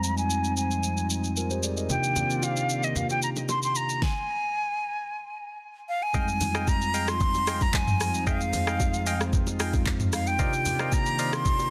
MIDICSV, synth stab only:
0, 0, Header, 1, 2, 480
1, 0, Start_track
1, 0, Tempo, 530973
1, 1714, Time_signature, 4, 2, 24, 8
1, 10578, End_track
2, 0, Start_track
2, 0, Title_t, "Synth stab"
2, 0, Program_c, 0, 62
2, 5552, Note_on_c, 0, 68, 92
2, 5553, Note_on_c, 0, 75, 86
2, 5555, Note_on_c, 0, 77, 85
2, 5557, Note_on_c, 0, 79, 106
2, 5680, Note_off_c, 0, 68, 0
2, 5681, Note_off_c, 0, 75, 0
2, 5682, Note_off_c, 0, 77, 0
2, 5683, Note_off_c, 0, 79, 0
2, 5915, Note_on_c, 0, 68, 76
2, 5917, Note_on_c, 0, 75, 74
2, 5919, Note_on_c, 0, 77, 70
2, 5921, Note_on_c, 0, 79, 90
2, 6035, Note_off_c, 0, 68, 0
2, 6036, Note_off_c, 0, 75, 0
2, 6037, Note_off_c, 0, 77, 0
2, 6038, Note_off_c, 0, 79, 0
2, 6271, Note_on_c, 0, 68, 73
2, 6274, Note_on_c, 0, 75, 72
2, 6275, Note_on_c, 0, 77, 73
2, 6277, Note_on_c, 0, 79, 82
2, 6400, Note_off_c, 0, 68, 0
2, 6401, Note_off_c, 0, 75, 0
2, 6402, Note_off_c, 0, 77, 0
2, 6403, Note_off_c, 0, 79, 0
2, 6753, Note_on_c, 0, 68, 79
2, 6755, Note_on_c, 0, 75, 71
2, 6756, Note_on_c, 0, 77, 67
2, 6758, Note_on_c, 0, 79, 85
2, 6881, Note_off_c, 0, 68, 0
2, 6882, Note_off_c, 0, 75, 0
2, 6883, Note_off_c, 0, 77, 0
2, 6884, Note_off_c, 0, 79, 0
2, 7472, Note_on_c, 0, 68, 93
2, 7474, Note_on_c, 0, 75, 88
2, 7476, Note_on_c, 0, 77, 86
2, 7478, Note_on_c, 0, 79, 106
2, 7600, Note_off_c, 0, 68, 0
2, 7601, Note_off_c, 0, 75, 0
2, 7603, Note_off_c, 0, 77, 0
2, 7603, Note_off_c, 0, 79, 0
2, 7837, Note_on_c, 0, 68, 78
2, 7840, Note_on_c, 0, 75, 74
2, 7841, Note_on_c, 0, 77, 73
2, 7843, Note_on_c, 0, 79, 93
2, 7956, Note_off_c, 0, 68, 0
2, 7957, Note_off_c, 0, 75, 0
2, 7958, Note_off_c, 0, 77, 0
2, 7959, Note_off_c, 0, 79, 0
2, 8194, Note_on_c, 0, 68, 74
2, 8195, Note_on_c, 0, 75, 71
2, 8197, Note_on_c, 0, 77, 68
2, 8199, Note_on_c, 0, 79, 86
2, 8321, Note_off_c, 0, 68, 0
2, 8322, Note_off_c, 0, 75, 0
2, 8323, Note_off_c, 0, 77, 0
2, 8324, Note_off_c, 0, 79, 0
2, 8673, Note_on_c, 0, 68, 73
2, 8674, Note_on_c, 0, 75, 70
2, 8677, Note_on_c, 0, 77, 70
2, 8678, Note_on_c, 0, 79, 85
2, 8801, Note_off_c, 0, 68, 0
2, 8802, Note_off_c, 0, 75, 0
2, 8803, Note_off_c, 0, 77, 0
2, 8804, Note_off_c, 0, 79, 0
2, 9392, Note_on_c, 0, 70, 96
2, 9394, Note_on_c, 0, 72, 86
2, 9396, Note_on_c, 0, 74, 88
2, 9397, Note_on_c, 0, 75, 87
2, 9398, Note_on_c, 0, 77, 108
2, 9521, Note_off_c, 0, 70, 0
2, 9521, Note_off_c, 0, 72, 0
2, 9522, Note_off_c, 0, 74, 0
2, 9523, Note_off_c, 0, 75, 0
2, 9523, Note_off_c, 0, 77, 0
2, 9758, Note_on_c, 0, 70, 78
2, 9760, Note_on_c, 0, 72, 74
2, 9761, Note_on_c, 0, 74, 75
2, 9763, Note_on_c, 0, 75, 73
2, 9764, Note_on_c, 0, 77, 88
2, 9877, Note_off_c, 0, 70, 0
2, 9877, Note_off_c, 0, 72, 0
2, 9878, Note_off_c, 0, 74, 0
2, 9879, Note_off_c, 0, 75, 0
2, 9880, Note_off_c, 0, 77, 0
2, 10113, Note_on_c, 0, 70, 76
2, 10114, Note_on_c, 0, 72, 72
2, 10116, Note_on_c, 0, 74, 67
2, 10117, Note_on_c, 0, 75, 69
2, 10118, Note_on_c, 0, 77, 81
2, 10241, Note_off_c, 0, 70, 0
2, 10242, Note_off_c, 0, 72, 0
2, 10242, Note_off_c, 0, 74, 0
2, 10243, Note_off_c, 0, 75, 0
2, 10244, Note_off_c, 0, 77, 0
2, 10578, End_track
0, 0, End_of_file